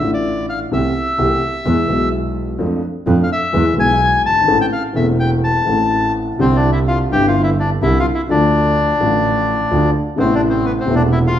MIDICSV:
0, 0, Header, 1, 4, 480
1, 0, Start_track
1, 0, Key_signature, 0, "minor"
1, 0, Tempo, 472813
1, 725, Time_signature, 4, 2, 24, 8
1, 6494, Key_signature, 0, "major"
1, 11565, End_track
2, 0, Start_track
2, 0, Title_t, "Bandoneon"
2, 0, Program_c, 0, 23
2, 0, Note_on_c, 0, 76, 83
2, 111, Note_off_c, 0, 76, 0
2, 141, Note_on_c, 0, 74, 79
2, 469, Note_off_c, 0, 74, 0
2, 502, Note_on_c, 0, 77, 75
2, 606, Note_off_c, 0, 77, 0
2, 743, Note_on_c, 0, 76, 94
2, 2123, Note_off_c, 0, 76, 0
2, 3284, Note_on_c, 0, 77, 67
2, 3351, Note_off_c, 0, 77, 0
2, 3373, Note_on_c, 0, 76, 97
2, 3806, Note_off_c, 0, 76, 0
2, 3854, Note_on_c, 0, 80, 103
2, 4286, Note_off_c, 0, 80, 0
2, 4325, Note_on_c, 0, 81, 108
2, 4652, Note_off_c, 0, 81, 0
2, 4682, Note_on_c, 0, 79, 95
2, 4733, Note_off_c, 0, 79, 0
2, 4797, Note_on_c, 0, 77, 90
2, 4903, Note_off_c, 0, 77, 0
2, 5035, Note_on_c, 0, 76, 86
2, 5143, Note_off_c, 0, 76, 0
2, 5278, Note_on_c, 0, 79, 86
2, 5386, Note_off_c, 0, 79, 0
2, 5522, Note_on_c, 0, 81, 88
2, 6215, Note_off_c, 0, 81, 0
2, 6506, Note_on_c, 0, 60, 88
2, 6661, Note_on_c, 0, 62, 88
2, 6666, Note_off_c, 0, 60, 0
2, 6809, Note_off_c, 0, 62, 0
2, 6825, Note_on_c, 0, 64, 83
2, 6896, Note_off_c, 0, 64, 0
2, 6982, Note_on_c, 0, 65, 92
2, 7090, Note_off_c, 0, 65, 0
2, 7232, Note_on_c, 0, 67, 106
2, 7377, Note_off_c, 0, 67, 0
2, 7386, Note_on_c, 0, 65, 84
2, 7534, Note_off_c, 0, 65, 0
2, 7543, Note_on_c, 0, 64, 83
2, 7616, Note_off_c, 0, 64, 0
2, 7712, Note_on_c, 0, 62, 92
2, 7818, Note_off_c, 0, 62, 0
2, 7943, Note_on_c, 0, 64, 101
2, 8107, Note_off_c, 0, 64, 0
2, 8116, Note_on_c, 0, 65, 94
2, 8185, Note_off_c, 0, 65, 0
2, 8270, Note_on_c, 0, 64, 78
2, 8340, Note_off_c, 0, 64, 0
2, 8432, Note_on_c, 0, 62, 98
2, 10055, Note_off_c, 0, 62, 0
2, 10349, Note_on_c, 0, 60, 92
2, 10503, Note_off_c, 0, 60, 0
2, 10503, Note_on_c, 0, 62, 96
2, 10572, Note_off_c, 0, 62, 0
2, 10659, Note_on_c, 0, 60, 78
2, 10814, Note_on_c, 0, 59, 87
2, 10818, Note_off_c, 0, 60, 0
2, 10884, Note_off_c, 0, 59, 0
2, 10965, Note_on_c, 0, 60, 85
2, 11115, Note_off_c, 0, 60, 0
2, 11120, Note_on_c, 0, 62, 98
2, 11193, Note_off_c, 0, 62, 0
2, 11289, Note_on_c, 0, 64, 92
2, 11361, Note_off_c, 0, 64, 0
2, 11443, Note_on_c, 0, 65, 104
2, 11565, Note_off_c, 0, 65, 0
2, 11565, End_track
3, 0, Start_track
3, 0, Title_t, "Upright piano"
3, 0, Program_c, 1, 0
3, 0, Note_on_c, 1, 64, 67
3, 1, Note_on_c, 1, 57, 57
3, 6, Note_on_c, 1, 33, 66
3, 9, Note_on_c, 1, 45, 74
3, 17, Note_on_c, 1, 62, 55
3, 28, Note_on_c, 1, 65, 65
3, 680, Note_off_c, 1, 64, 0
3, 687, Note_off_c, 1, 57, 0
3, 689, Note_off_c, 1, 33, 0
3, 691, Note_off_c, 1, 45, 0
3, 694, Note_off_c, 1, 62, 0
3, 700, Note_off_c, 1, 65, 0
3, 722, Note_on_c, 1, 52, 67
3, 724, Note_on_c, 1, 57, 64
3, 724, Note_on_c, 1, 60, 63
3, 727, Note_on_c, 1, 36, 77
3, 727, Note_on_c, 1, 48, 81
3, 729, Note_on_c, 1, 67, 68
3, 924, Note_off_c, 1, 52, 0
3, 924, Note_off_c, 1, 57, 0
3, 925, Note_off_c, 1, 60, 0
3, 926, Note_off_c, 1, 36, 0
3, 926, Note_off_c, 1, 48, 0
3, 927, Note_off_c, 1, 67, 0
3, 1200, Note_on_c, 1, 52, 69
3, 1201, Note_on_c, 1, 48, 78
3, 1201, Note_on_c, 1, 57, 60
3, 1202, Note_on_c, 1, 36, 75
3, 1205, Note_on_c, 1, 60, 61
3, 1210, Note_on_c, 1, 67, 73
3, 1401, Note_off_c, 1, 52, 0
3, 1402, Note_off_c, 1, 36, 0
3, 1402, Note_off_c, 1, 48, 0
3, 1402, Note_off_c, 1, 57, 0
3, 1404, Note_off_c, 1, 60, 0
3, 1406, Note_off_c, 1, 67, 0
3, 1679, Note_on_c, 1, 52, 77
3, 1681, Note_on_c, 1, 56, 63
3, 1683, Note_on_c, 1, 40, 76
3, 1683, Note_on_c, 1, 59, 64
3, 1684, Note_on_c, 1, 68, 76
3, 1879, Note_off_c, 1, 56, 0
3, 1881, Note_off_c, 1, 40, 0
3, 1881, Note_off_c, 1, 52, 0
3, 1881, Note_off_c, 1, 59, 0
3, 1881, Note_off_c, 1, 68, 0
3, 1903, Note_on_c, 1, 52, 63
3, 1915, Note_on_c, 1, 56, 59
3, 1920, Note_on_c, 1, 47, 76
3, 1922, Note_on_c, 1, 35, 74
3, 1927, Note_on_c, 1, 59, 57
3, 1938, Note_on_c, 1, 68, 71
3, 2588, Note_off_c, 1, 52, 0
3, 2594, Note_off_c, 1, 56, 0
3, 2597, Note_off_c, 1, 47, 0
3, 2598, Note_off_c, 1, 35, 0
3, 2600, Note_off_c, 1, 59, 0
3, 2606, Note_off_c, 1, 68, 0
3, 2622, Note_on_c, 1, 53, 86
3, 2623, Note_on_c, 1, 57, 62
3, 2627, Note_on_c, 1, 41, 85
3, 2632, Note_on_c, 1, 62, 69
3, 2634, Note_on_c, 1, 69, 81
3, 2828, Note_off_c, 1, 57, 0
3, 2829, Note_off_c, 1, 41, 0
3, 2830, Note_off_c, 1, 53, 0
3, 2832, Note_off_c, 1, 62, 0
3, 2833, Note_off_c, 1, 69, 0
3, 3105, Note_on_c, 1, 53, 86
3, 3107, Note_on_c, 1, 41, 89
3, 3108, Note_on_c, 1, 57, 60
3, 3111, Note_on_c, 1, 62, 72
3, 3112, Note_on_c, 1, 69, 81
3, 3309, Note_off_c, 1, 41, 0
3, 3309, Note_off_c, 1, 53, 0
3, 3309, Note_off_c, 1, 57, 0
3, 3311, Note_off_c, 1, 62, 0
3, 3311, Note_off_c, 1, 69, 0
3, 3581, Note_on_c, 1, 52, 82
3, 3582, Note_on_c, 1, 56, 65
3, 3584, Note_on_c, 1, 40, 79
3, 3585, Note_on_c, 1, 59, 59
3, 3587, Note_on_c, 1, 68, 74
3, 3782, Note_off_c, 1, 52, 0
3, 3786, Note_off_c, 1, 40, 0
3, 3786, Note_off_c, 1, 56, 0
3, 3787, Note_off_c, 1, 59, 0
3, 3788, Note_off_c, 1, 68, 0
3, 3797, Note_on_c, 1, 52, 67
3, 3815, Note_on_c, 1, 56, 68
3, 3819, Note_on_c, 1, 35, 74
3, 3821, Note_on_c, 1, 47, 73
3, 3825, Note_on_c, 1, 59, 67
3, 3838, Note_on_c, 1, 68, 66
3, 4361, Note_on_c, 1, 30, 50
3, 4423, Note_off_c, 1, 30, 0
3, 4425, Note_on_c, 1, 31, 62
3, 4482, Note_on_c, 1, 32, 68
3, 4485, Note_off_c, 1, 31, 0
3, 4495, Note_off_c, 1, 52, 0
3, 4503, Note_off_c, 1, 56, 0
3, 4506, Note_off_c, 1, 35, 0
3, 4507, Note_off_c, 1, 47, 0
3, 4508, Note_off_c, 1, 59, 0
3, 4515, Note_off_c, 1, 68, 0
3, 4541, Note_on_c, 1, 45, 85
3, 4541, Note_on_c, 1, 52, 79
3, 4544, Note_off_c, 1, 32, 0
3, 4544, Note_on_c, 1, 33, 94
3, 4546, Note_on_c, 1, 57, 74
3, 4546, Note_on_c, 1, 60, 64
3, 4548, Note_on_c, 1, 69, 82
3, 4746, Note_off_c, 1, 45, 0
3, 4746, Note_off_c, 1, 52, 0
3, 4748, Note_off_c, 1, 33, 0
3, 4748, Note_off_c, 1, 57, 0
3, 4748, Note_off_c, 1, 60, 0
3, 4750, Note_off_c, 1, 69, 0
3, 5005, Note_on_c, 1, 52, 67
3, 5019, Note_on_c, 1, 57, 64
3, 5026, Note_on_c, 1, 28, 83
3, 5027, Note_on_c, 1, 40, 90
3, 5033, Note_on_c, 1, 60, 67
3, 5047, Note_on_c, 1, 69, 74
3, 5711, Note_off_c, 1, 52, 0
3, 5718, Note_off_c, 1, 57, 0
3, 5721, Note_off_c, 1, 28, 0
3, 5722, Note_off_c, 1, 40, 0
3, 5725, Note_off_c, 1, 60, 0
3, 5732, Note_off_c, 1, 69, 0
3, 5735, Note_on_c, 1, 52, 73
3, 5750, Note_on_c, 1, 57, 67
3, 5753, Note_on_c, 1, 45, 72
3, 5754, Note_on_c, 1, 33, 71
3, 5762, Note_on_c, 1, 60, 59
3, 5775, Note_on_c, 1, 69, 73
3, 6446, Note_off_c, 1, 52, 0
3, 6454, Note_off_c, 1, 57, 0
3, 6455, Note_off_c, 1, 45, 0
3, 6456, Note_off_c, 1, 33, 0
3, 6460, Note_off_c, 1, 60, 0
3, 6466, Note_off_c, 1, 69, 0
3, 6470, Note_on_c, 1, 50, 75
3, 6484, Note_on_c, 1, 55, 70
3, 6490, Note_on_c, 1, 48, 92
3, 6493, Note_on_c, 1, 36, 86
3, 6498, Note_on_c, 1, 60, 63
3, 6509, Note_on_c, 1, 64, 72
3, 7172, Note_off_c, 1, 50, 0
3, 7179, Note_off_c, 1, 55, 0
3, 7182, Note_off_c, 1, 48, 0
3, 7184, Note_off_c, 1, 36, 0
3, 7186, Note_off_c, 1, 60, 0
3, 7191, Note_off_c, 1, 64, 0
3, 7202, Note_on_c, 1, 50, 74
3, 7217, Note_on_c, 1, 55, 62
3, 7223, Note_on_c, 1, 31, 74
3, 7226, Note_on_c, 1, 43, 74
3, 7227, Note_on_c, 1, 60, 66
3, 7246, Note_on_c, 1, 64, 73
3, 7898, Note_off_c, 1, 50, 0
3, 7906, Note_off_c, 1, 55, 0
3, 7909, Note_off_c, 1, 31, 0
3, 7910, Note_off_c, 1, 43, 0
3, 7911, Note_off_c, 1, 60, 0
3, 7920, Note_off_c, 1, 64, 0
3, 7941, Note_on_c, 1, 50, 72
3, 7941, Note_on_c, 1, 55, 63
3, 7942, Note_on_c, 1, 36, 80
3, 7943, Note_on_c, 1, 48, 88
3, 7945, Note_on_c, 1, 60, 66
3, 7945, Note_on_c, 1, 64, 83
3, 8143, Note_off_c, 1, 36, 0
3, 8143, Note_off_c, 1, 50, 0
3, 8143, Note_off_c, 1, 55, 0
3, 8144, Note_off_c, 1, 48, 0
3, 8145, Note_off_c, 1, 60, 0
3, 8145, Note_off_c, 1, 64, 0
3, 8401, Note_on_c, 1, 50, 89
3, 8412, Note_on_c, 1, 53, 67
3, 8418, Note_on_c, 1, 38, 86
3, 8428, Note_on_c, 1, 57, 72
3, 8438, Note_on_c, 1, 65, 84
3, 9101, Note_off_c, 1, 53, 0
3, 9104, Note_off_c, 1, 38, 0
3, 9104, Note_off_c, 1, 50, 0
3, 9108, Note_off_c, 1, 57, 0
3, 9113, Note_off_c, 1, 65, 0
3, 9121, Note_on_c, 1, 50, 68
3, 9137, Note_on_c, 1, 53, 66
3, 9140, Note_on_c, 1, 33, 76
3, 9143, Note_on_c, 1, 45, 84
3, 9151, Note_on_c, 1, 57, 60
3, 9162, Note_on_c, 1, 65, 79
3, 9807, Note_off_c, 1, 50, 0
3, 9815, Note_off_c, 1, 53, 0
3, 9816, Note_off_c, 1, 33, 0
3, 9817, Note_off_c, 1, 45, 0
3, 9821, Note_off_c, 1, 57, 0
3, 9827, Note_off_c, 1, 65, 0
3, 9854, Note_on_c, 1, 50, 88
3, 9856, Note_on_c, 1, 53, 66
3, 9861, Note_on_c, 1, 38, 88
3, 9861, Note_on_c, 1, 65, 82
3, 9862, Note_on_c, 1, 57, 60
3, 10054, Note_off_c, 1, 53, 0
3, 10055, Note_off_c, 1, 50, 0
3, 10056, Note_off_c, 1, 38, 0
3, 10057, Note_off_c, 1, 57, 0
3, 10057, Note_off_c, 1, 65, 0
3, 10314, Note_on_c, 1, 48, 78
3, 10328, Note_on_c, 1, 57, 68
3, 10334, Note_on_c, 1, 33, 90
3, 10334, Note_on_c, 1, 45, 91
3, 10343, Note_on_c, 1, 59, 73
3, 10356, Note_on_c, 1, 64, 88
3, 11004, Note_off_c, 1, 48, 0
3, 11012, Note_off_c, 1, 57, 0
3, 11014, Note_off_c, 1, 33, 0
3, 11014, Note_off_c, 1, 45, 0
3, 11019, Note_off_c, 1, 59, 0
3, 11025, Note_off_c, 1, 64, 0
3, 11026, Note_on_c, 1, 48, 72
3, 11042, Note_on_c, 1, 57, 60
3, 11046, Note_on_c, 1, 28, 86
3, 11049, Note_on_c, 1, 40, 82
3, 11053, Note_on_c, 1, 59, 68
3, 11068, Note_on_c, 1, 64, 83
3, 11565, Note_off_c, 1, 28, 0
3, 11565, Note_off_c, 1, 40, 0
3, 11565, Note_off_c, 1, 48, 0
3, 11565, Note_off_c, 1, 57, 0
3, 11565, Note_off_c, 1, 59, 0
3, 11565, Note_off_c, 1, 64, 0
3, 11565, End_track
4, 0, Start_track
4, 0, Title_t, "Double bass"
4, 0, Program_c, 2, 43
4, 11, Note_on_c, 2, 33, 89
4, 691, Note_off_c, 2, 33, 0
4, 729, Note_on_c, 2, 36, 78
4, 927, Note_off_c, 2, 36, 0
4, 1204, Note_on_c, 2, 36, 88
4, 1404, Note_off_c, 2, 36, 0
4, 1682, Note_on_c, 2, 40, 99
4, 1880, Note_off_c, 2, 40, 0
4, 1925, Note_on_c, 2, 35, 83
4, 2600, Note_off_c, 2, 35, 0
4, 2637, Note_on_c, 2, 41, 83
4, 2834, Note_off_c, 2, 41, 0
4, 3118, Note_on_c, 2, 41, 103
4, 3315, Note_off_c, 2, 41, 0
4, 3597, Note_on_c, 2, 40, 98
4, 3793, Note_off_c, 2, 40, 0
4, 3830, Note_on_c, 2, 35, 91
4, 4308, Note_off_c, 2, 35, 0
4, 4315, Note_on_c, 2, 31, 62
4, 4542, Note_off_c, 2, 31, 0
4, 4548, Note_on_c, 2, 33, 77
4, 4750, Note_off_c, 2, 33, 0
4, 5028, Note_on_c, 2, 28, 103
4, 5722, Note_off_c, 2, 28, 0
4, 5765, Note_on_c, 2, 33, 91
4, 6461, Note_off_c, 2, 33, 0
4, 6495, Note_on_c, 2, 36, 91
4, 7185, Note_off_c, 2, 36, 0
4, 7220, Note_on_c, 2, 31, 99
4, 7907, Note_off_c, 2, 31, 0
4, 7942, Note_on_c, 2, 36, 96
4, 8143, Note_off_c, 2, 36, 0
4, 8430, Note_on_c, 2, 38, 93
4, 9110, Note_off_c, 2, 38, 0
4, 9144, Note_on_c, 2, 33, 107
4, 9818, Note_off_c, 2, 33, 0
4, 9858, Note_on_c, 2, 38, 101
4, 10055, Note_off_c, 2, 38, 0
4, 10339, Note_on_c, 2, 33, 101
4, 11017, Note_off_c, 2, 33, 0
4, 11056, Note_on_c, 2, 28, 102
4, 11565, Note_off_c, 2, 28, 0
4, 11565, End_track
0, 0, End_of_file